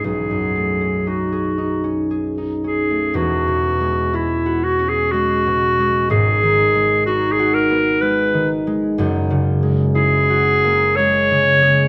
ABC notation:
X:1
M:3/4
L:1/16
Q:1/4=61
K:E
V:1 name="Clarinet"
G4 F4 z2 G2 | F4 E2 F G F4 | G4 F G ^A2 B2 z2 | z4 G4 c4 |]
V:2 name="Harp" clef=bass
[B,,,CDG] F,, A, C D G D C G D C A, | (3[E,,,E,,]2 B,,2 G,2 (3E2 F2 C2 (3G,2 B,,2 G,2 | (3[G,,,G,,]2 D,2 G,2 (3D2 F2 B,2 (3G,2 D,2 G,2 | (3[F,,,F,,]2 C,2 G,2 (3E2 F2 ^A,2 (3G,2 C,2 G,2 |]